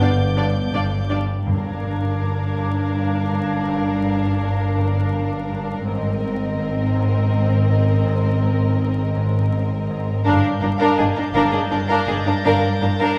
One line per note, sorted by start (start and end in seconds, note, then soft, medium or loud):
0.00 0.65 G1 medium
0.00 0.33 G2 medium
0.00 0.36 G2 soft
0.00 0.65 G2 medium
0.00 1.09 G3 medium
0.00 0.70 B3 medium
0.00 0.09 D4 soft
0.00 0.09 D5 soft
0.00 0.10 F5 soft
0.00 1.06 D6 medium
0.00 1.07 G6 medium
0.37 0.72 G2 medium
0.37 0.45 D4 soft
0.37 0.45 D5 soft
0.37 0.45 F5 soft
0.73 1.38 G1 soft
0.73 1.45 G2 soft
0.73 1.39 G2 medium
0.73 0.81 D4 soft
0.73 0.82 D5 soft
0.73 0.83 F5 soft
1.10 5.00 G3 soft
1.10 1.18 D4 soft
1.10 1.18 D5 soft
1.10 1.19 F5 soft
1.46 5.82 G1 soft
1.46 1.82 G2 medium
1.46 2.53 G2 medium
1.46 5.83 G2 soft
1.46 5.82 D4 soft
1.46 5.83 A#4 soft
1.46 5.82 F5 soft
1.46 5.45 D6 soft
1.46 4.73 G#6 soft
1.83 2.20 G2 soft
2.21 2.56 G2 soft
2.57 2.94 G2 medium
2.95 3.30 G2 soft
3.31 3.67 G2 soft
3.68 4.04 G2 medium
4.05 4.40 G2 soft
4.41 4.76 G2 soft
4.77 5.13 G2 medium
5.15 5.50 G2 soft
5.51 5.90 G2 soft
5.86 10.22 G#1 soft
5.86 10.21 G#2 soft
5.86 6.23 G#2 medium
5.86 10.21 C4 soft
5.86 10.22 A#4 soft
5.86 10.22 D#5 soft
6.24 6.58 G#2 soft
6.59 6.94 G#2 soft
6.95 7.31 G#2 medium
7.32 7.68 G#2 soft
7.69 8.04 G#2 soft
8.06 8.41 G#2 medium
8.42 8.77 G#2 medium
8.78 9.15 G#2 soft
9.16 9.51 G#2 medium
9.52 9.89 G#2 medium
9.90 10.29 G#2 medium
10.24 10.33 G1 medium
10.24 10.33 G2 medium
10.24 10.62 G2 medium
10.24 10.42 D4 medium
10.24 10.42 A#4 medium
10.24 10.42 F5 medium
10.24 13.19 G6 soft
10.60 10.69 G1 medium
10.60 10.69 G2 medium
10.60 10.98 G2 medium
10.60 10.70 D4 medium
10.60 10.70 A#4 soft
10.60 10.68 F5 soft
10.78 10.87 G2 medium
10.78 10.97 D4 medium
10.78 10.97 A#4 medium
10.78 10.96 F5 medium
10.96 11.06 G1 medium
10.96 11.06 G2 medium
10.96 11.34 G2 soft
10.96 11.07 D4 soft
10.96 11.06 G#4 soft
10.96 11.04 D#5 medium
11.02 13.19 A6 soft
11.14 11.24 G2 medium
11.14 11.25 D4 medium
11.14 11.24 A#4 soft
11.14 11.22 F5 medium
11.33 11.41 G1 medium
11.33 11.72 G2 medium
11.33 11.43 G2 medium
11.33 11.52 D4 medium
11.33 11.52 A#4 medium
11.33 11.51 F5 medium
11.52 11.60 G2 soft
11.52 11.61 D4 medium
11.52 11.60 G#4 medium
11.52 11.60 D#5 soft
11.71 11.78 G1 medium
11.71 11.79 G2 medium
11.71 12.08 G2 medium
11.71 11.78 D4 soft
11.71 11.79 A#4 medium
11.71 11.78 F5 medium
11.71 13.19 A#6 medium
11.88 11.97 G2 medium
11.88 12.06 D4 medium
11.88 12.07 A#4 medium
11.88 12.06 F5 medium
12.07 12.15 G1 soft
12.07 12.16 G2 medium
12.07 12.45 G2 medium
12.07 12.15 D4 medium
12.07 12.15 G#4 soft
12.07 12.15 D#5 medium
12.26 12.34 G2 soft
12.26 12.34 D4 medium
12.26 12.34 A#4 medium
12.26 12.33 F5 medium
12.44 12.53 G1 medium
12.44 12.52 G2 medium
12.44 12.81 G2 medium
12.44 12.62 D4 medium
12.44 12.62 A#4 medium
12.44 12.61 F5 medium
12.81 12.89 G1 soft
12.81 12.89 G2 soft
12.81 13.18 G2 medium
12.81 12.89 D4 soft
12.81 12.89 A#4 soft
12.81 12.89 F5 soft
12.99 13.08 G2 medium
12.99 13.17 D4 medium
12.99 13.17 A#4 medium
12.99 13.16 F5 medium